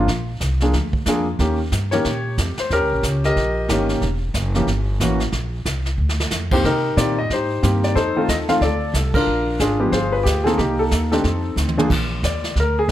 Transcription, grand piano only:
0.62 F3 A#3 D4 G#4
1.07 F3 A#3 D4 G#4
1.40 D#3 A#3 C#4 G4
1.91 D#3 A#3 C#4 G4 A#4 C#5
2.60 C5
2.72 C#4 G4 A#4
3.25 G4 A#4 D#5
3.69 D#3 A#3 C#4 G4
4.55 E3 A#3 C#4 G4
5.01 E3 A#3 C#4 F#4
6.52 D#3 A#3 C4 G4 C5
6.65 D#4 G4 A#4
6.97 D#3 A#3 C4 G4 D5
7.18 D#5
7.33 D#4 G4 C5
7.63 D#3 A#3 C4 G4
7.84 D5
7.96 D#4 A4 C5
8.16 D#3 A3 C4 F4
8.29 D#5
8.49 D#3 A3 C4 F4 F5
8.62 A4 D5
9.15 D4 F4 A#4
9.60 D4 F4 G#4
9.80 F3 G#3 B3 G4
9.92 F4 G#4 C5
10.13 B4
10.23 G4
10.44 D#3 A#3 C4 G#4 A4
10.58 A#3 D#4 G4
10.79 A4
11.12 D#3 A3 C4 D4 D#4 G4 A4
11.78 F3 A#3 D4 G#4
12.25 D5
12.60 A#4
12.79 G#4

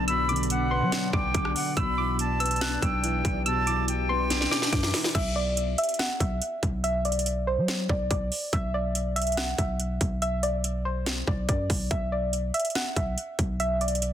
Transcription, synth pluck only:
0.08 E6
0.29 D6
0.71 C6
1.13 D6
1.34 D6
1.77 E6
1.98 D6
2.40 E6
2.61 F#6
2.82 E6
3.46 E6
3.67 D6
4.09 C6
4.51 D6
4.72 D6
5.15 E5
5.36 D5
5.78 E5
5.99 F#5
6.20 E5
6.84 E5
7.05 D5
7.47 C5
7.89 D5
8.10 D5
8.53 E5
8.74 D5
9.16 E5
9.37 F#5
9.58 E5
10.22 E5
10.43 D5
10.85 C5
11.27 D5
11.49 D5
11.91 E5
12.12 D5
12.54 E5
12.76 F#5
12.97 E5
13.60 E5
13.81 D5

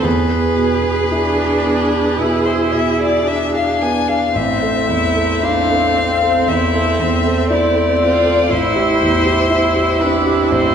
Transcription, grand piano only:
0.03 E2
0.30 G#4
0.56 B2
0.84 G#4
1.12 E4
1.38 G#4
1.64 B3
1.91 G#4
2.17 B2
2.45 G#4
2.72 B2
2.99 G#4
3.26 E4
3.54 G#4
3.82 B3
4.08 G#4
4.35 A1
4.62 A4
4.89 E2
5.16 A4
5.43 E4
5.70 A4
5.96 C4
6.22 A4
6.48 E2
6.75 A4
7.00 E2
7.25 A4
7.50 E4
7.75 A4
8.00 C4
8.25 A4
8.50 A1
8.76 G4
9.01 E2
9.26 G4
9.50 E4
9.76 G4
10.01 C4
10.26 G4
10.52 A1

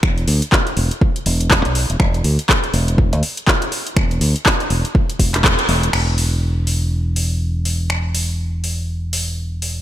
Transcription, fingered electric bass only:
0.03 E1
0.28 D2
0.77 E1
1.26 E1
1.65 B1
1.90 E1
2.00 E1
2.24 D2
2.74 E1
3.13 D2
3.97 E1
4.21 D2
4.70 E1
5.19 E1
5.69 E1
5.93 E1

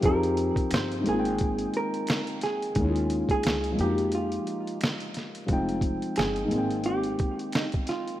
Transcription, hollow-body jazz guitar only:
0.06 A#4
0.74 C5
1.09 G#4
1.77 A#4
2.43 G#4
3.31 G#4
3.81 G4
4.15 F4
6.18 G#4
6.86 G4
7.55 D#4
7.89 F4

